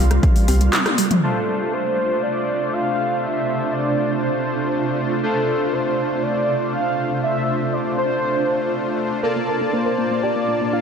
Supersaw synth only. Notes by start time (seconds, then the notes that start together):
1.23 A3 D4 F4 C5
5.23 A3 D4 F4 C5
9.23 A#3 F4 D5 A5